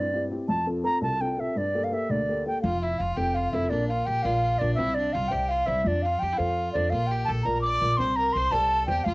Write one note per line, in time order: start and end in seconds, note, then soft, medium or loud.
0.00 0.30 G2 medium
0.00 0.24 D5 medium
0.13 0.28 C4 soft
0.13 0.29 E4 soft
0.13 0.29 G4 soft
0.30 0.44 C4 soft
0.30 0.45 E4 soft
0.30 0.45 G4 soft
0.48 0.84 F2 medium
0.48 0.66 A5 medium
0.66 0.82 C4 soft
0.66 0.82 F4 medium
0.66 0.82 A4 medium
0.83 1.13 C4 soft
0.83 1.13 F4 soft
0.83 1.13 A4 medium
0.83 1.01 A#5 medium
1.01 1.37 C2 medium
1.01 1.22 A5 medium
1.20 1.36 C4 soft
1.20 1.37 F4 soft
1.20 1.37 A4 soft
1.20 1.41 G5 medium
1.37 1.52 C4 soft
1.37 1.52 F4 soft
1.37 1.52 A4 soft
1.37 1.59 E5 medium
1.55 1.91 G2 medium
1.55 1.86 D5 medium
1.75 1.90 A#3 medium
1.75 1.91 G4 soft
1.75 1.91 A4 medium
1.84 1.95 F5 medium
1.91 2.21 A#3 soft
1.91 2.21 G4 soft
1.91 2.21 A4 soft
1.91 2.12 E5 medium
2.10 2.45 D2 medium
2.10 2.47 D5 medium
2.29 2.44 A#3 soft
2.29 2.45 G4 soft
2.29 2.45 A4 soft
2.46 2.60 A#3 soft
2.46 2.60 G4 soft
2.46 2.60 A4 soft
2.46 2.61 G5 medium
2.62 2.96 F1 medium
2.62 3.67 F3 medium
2.62 2.84 F4 medium
2.62 2.80 F5 medium
2.82 3.02 E4 medium
2.82 3.00 E5 medium
2.99 3.16 F1 medium
2.99 3.18 F4 medium
2.99 3.15 F5 medium
3.16 3.50 F1 medium
3.16 3.51 C4 soft
3.16 3.52 F4 soft
3.16 3.37 G4 medium
3.16 3.53 A4 medium
3.16 3.36 G5 medium
3.35 3.55 F4 medium
3.35 3.52 F5 medium
3.52 3.69 F1 medium
3.52 3.70 C4 soft
3.52 3.69 E4 medium
3.52 3.70 F4 soft
3.52 3.71 A4 medium
3.52 3.71 E5 medium
3.70 4.03 A#1 medium
3.70 4.75 A#3 medium
3.70 3.92 D4 medium
3.70 3.88 D5 medium
3.89 4.08 F4 medium
3.89 4.07 F5 medium
4.06 4.23 A#1 medium
4.06 4.26 G4 medium
4.06 4.24 G5 medium
4.23 4.57 A#1 medium
4.23 4.59 F4 soft
4.23 4.62 F4 medium
4.23 4.59 A#4 soft
4.23 4.60 D5 medium
4.23 4.60 F5 medium
4.58 4.76 A#1 medium
4.58 4.79 D4 medium
4.58 4.77 F4 soft
4.58 4.78 A#4 soft
4.58 4.74 D5 medium
4.58 4.78 D5 soft
4.75 5.81 C4 medium
4.75 4.97 E4 medium
4.75 4.96 E5 medium
4.79 5.11 C2 medium
4.94 5.16 D4 medium
4.94 5.14 D5 medium
5.13 5.30 C2 medium
5.13 5.33 F4 medium
5.13 5.30 F5 loud
5.28 5.52 G4 medium
5.28 5.65 C5 medium
5.28 5.66 D5 soft
5.28 5.66 E5 medium
5.28 5.50 G5 medium
5.33 5.65 C2 medium
5.49 5.69 F4 medium
5.49 5.67 F5 medium
5.66 5.83 C2 medium
5.66 5.85 E4 medium
5.66 5.84 C5 soft
5.66 5.84 D5 soft
5.66 5.83 E5 medium
5.66 5.85 E5 medium
5.83 6.18 F2 medium
5.83 6.88 F3 medium
5.83 6.07 D4 medium
5.83 5.88 E5 medium
5.87 6.04 D5 medium
6.02 6.24 F4 medium
6.02 6.21 F5 medium
6.19 6.37 F2 medium
6.19 6.34 G4 medium
6.19 6.39 G5 medium
6.33 6.40 E4 medium
6.38 6.71 F2 medium
6.38 6.73 F4 soft
6.38 6.77 F4 medium
6.38 6.73 A4 soft
6.38 6.73 C5 soft
6.38 6.72 F5 medium
6.73 6.90 F2 medium
6.73 6.91 D4 medium
6.73 6.91 F4 soft
6.73 6.92 A4 soft
6.73 6.92 C5 soft
6.73 6.92 D5 medium
6.90 7.24 A#1 medium
6.90 7.96 A#3 medium
6.90 7.13 F4 medium
6.90 7.08 F5 medium
7.07 7.24 G5 medium
7.11 7.30 G4 medium
7.25 7.44 A#1 medium
7.25 7.47 A4 medium
7.25 7.31 A5 medium
7.43 7.78 A#1 medium
7.43 7.79 F4 soft
7.43 7.80 A#4 soft
7.43 7.64 A#4 medium
7.43 7.80 D5 soft
7.43 7.61 A#5 medium
7.62 7.97 D5 medium
7.62 7.98 D6 medium
7.81 7.97 A#1 medium
7.81 7.98 F4 soft
7.81 7.98 A#4 soft
7.81 7.98 D5 soft
7.97 8.32 C2 medium
7.97 9.02 C4 medium
7.97 8.17 C5 medium
7.97 8.17 C6 medium
8.16 8.38 A#4 medium
8.16 8.34 A#5 medium
8.33 8.51 C2 medium
8.33 8.54 C5 medium
8.33 8.53 C6 loud
8.51 8.85 C2 medium
8.51 8.86 G4 soft
8.51 8.89 A4 medium
8.51 8.87 C5 soft
8.51 8.87 D5 medium
8.51 8.86 A5 medium
8.86 9.04 E2 medium
8.86 9.05 G4 medium
8.86 9.05 C5 soft
8.86 9.05 D5 medium
8.86 9.05 G5 medium
9.04 9.14 F2 medium
9.04 9.14 F3 medium
9.04 9.14 F4 medium
9.04 9.14 F5 medium